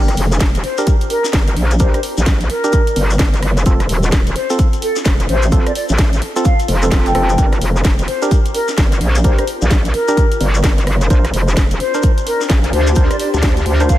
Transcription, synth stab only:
0.78 D4 G4 A#4
1.80 D4 G4 A#4
2.64 D4 G4 A#4
3.66 C4 F4 A4
4.50 C4 F4 A4
5.52 C4 F4 A4
6.36 C4 F4 A4
6.83 C4 F4 A4
6.92 C4 F4 A4
7.15 C4 F4 A4
7.38 D4 G4 A#4
8.22 D4 G4 A#4
9.24 D4 G4 A#4
10.08 D4 G4 A#4
11.10 D4 A#4 C5
11.94 D4 A#4 C5
12.96 D4 A#4 C5
13.80 D4 A#4 C5

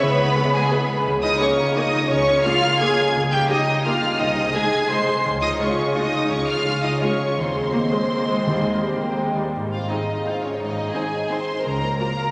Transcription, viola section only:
0.36 B3 G#4
0.72 B3 G#4
1.40 A#3 G#4
1.76 A#3 G#4
2.45 A#3 G#4
2.81 A#3 G#4
3.50 A#3 G4
3.86 A#3 G4
4.55 G#3 G#4
4.90 G#3 G#4
5.59 G#3 F4
5.96 G#3 F4
6.64 G#3 F4
7.02 G#3 F4
7.73 A#3
7.92 G#3
8.11 A#3
8.29 G#3
8.47 G3
8.64 G#3
8.81 G3
9.00 A#3
9.19 G#3
9.37 G3
9.90 C4 D#4
10.26 C4 D#4
10.94 C4 D#4
11.30 C4 D#4
11.99 A#3 F4

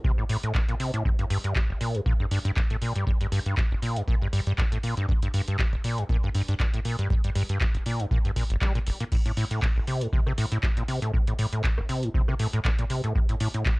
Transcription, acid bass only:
0.04 C3
0.18 A2
0.29 A2
0.43 A2
0.55 A2
0.69 A#2
0.80 C3
0.94 A2
1.05 G2
1.19 G2
1.30 G2
1.44 G2
1.56 G2
1.70 G1
1.81 A#2
1.95 G2
2.06 A#2
2.20 G2
2.31 G2
2.45 G2
2.56 G2
2.70 A2
2.82 A#2
2.96 G2
3.07 G2
3.21 G2
3.32 G2
3.46 G2
3.71 G1
3.82 A#2
3.96 G2
4.08 A#2
4.22 G2
4.33 G2
4.47 G2
4.58 G2
4.72 A2
4.83 A#2
4.97 G2
5.09 G2
5.22 G2
5.34 G2
5.48 G2
5.59 G2
5.73 G1
5.84 A#2
5.98 G2
6.09 A#2
6.23 G2
6.35 G2
6.48 G2
6.60 G2
6.74 A2
6.85 A#2
6.99 G2
7.10 G2
7.24 G2
7.35 G2
7.49 G2
7.61 G2
7.74 G1
7.86 A#2
8.00 G2
8.11 A#2
8.25 G2
8.36 A#2
8.50 G1
8.61 G3
8.75 A#2
8.87 G1
9.00 A#2
9.12 A2
9.26 A2
9.37 A2
9.51 A2
9.76 A1
9.87 C3
10.01 A2
10.13 C3
10.27 C3
10.38 A2
10.52 A2
10.63 A2
10.77 A#2
10.88 C3
11.02 A2
11.14 A2
11.27 A2
11.39 A2
11.53 A2
11.64 A2
11.78 A1
11.89 C3
12.03 A2
12.14 C3
12.28 C3
12.39 A2
12.53 A2
12.65 A2
12.79 A#2
12.90 C3
13.04 A2
13.15 A2
13.29 A2
13.41 A2
13.54 A2
13.66 A2

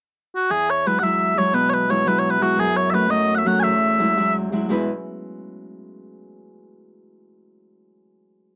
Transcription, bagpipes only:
0.36 F#4
0.51 G#4
0.70 C#5
0.87 B4
0.99 F#5
1.03 E5
1.38 C#5
1.54 B4
1.70 C#5
1.74 B4
1.90 C#5
2.08 B4
2.19 C#5
2.30 B4
2.42 F#4
2.60 G#4
2.77 C#5
2.90 E5
2.94 B4
3.10 D#5
3.35 E5 F#5
3.47 F#5
3.60 E5 G#5

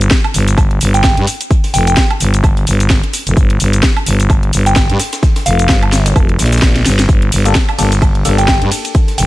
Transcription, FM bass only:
0.34 G1
0.81 G1
1.17 G2
1.74 F1
2.21 G1
2.67 G1
3.27 F1
3.37 G1
3.60 G1
4.07 G1
4.53 G1
4.90 G2
5.46 F1
5.69 G1
6.16 F1
6.39 A#1
6.62 A#1
6.86 G1
7.32 G1
7.79 G1
8.25 G1
8.62 G2
9.18 F1

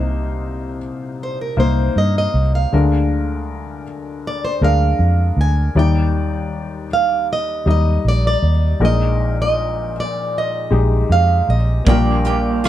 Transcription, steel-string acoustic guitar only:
Already playing: D#5
1.23 C5
1.41 A#4
1.60 C5
1.98 D#5
2.18 D#5
2.55 F5
4.27 D5
4.45 C5
4.64 F5
5.41 G#5
5.79 G5
6.93 F5
7.33 D#5
7.71 D#5
8.08 D5
8.27 D5
8.85 D#5
9.42 D#5
10.00 D5
10.38 D#5
11.12 F5
11.50 D#5
11.89 G5
12.27 G5

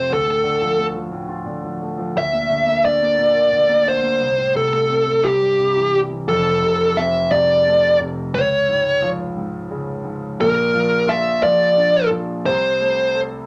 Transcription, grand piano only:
Already playing: F2 C3 A3 C4 F4
0.10 D2
0.27 A2
0.43 D3
0.61 F3
0.79 A3
0.95 F3
1.12 A2
1.29 F4
1.46 D3
1.63 F3
1.82 A3
1.98 F3
2.16 D2
2.32 A#2
2.49 D3
2.66 A#3
2.84 D4
3.01 A#3
3.18 A#2
3.34 A#4
3.52 D3
3.68 A#3
3.85 D4
4.03 A#3
4.20 C2
4.38 A2
4.55 C3
4.72 A3
4.89 C4
5.07 A3
5.24 C2
5.41 G2
5.59 C3
5.76 E3
5.93 G3
6.10 E3
6.28 F1 F2
6.62 C3
6.97 C4
7.32 C3
7.67 A3
8.00 C3
8.34 C#2
8.69 G#2
9.02 F3
9.37 G#2
9.70 C#3
10.04 G#2
10.40 A#1 A#2
10.74 F3
11.07 F4
11.42 F3
11.77 D4
12.10 F3
12.45 C2 C3
12.80 A3
13.14 A4

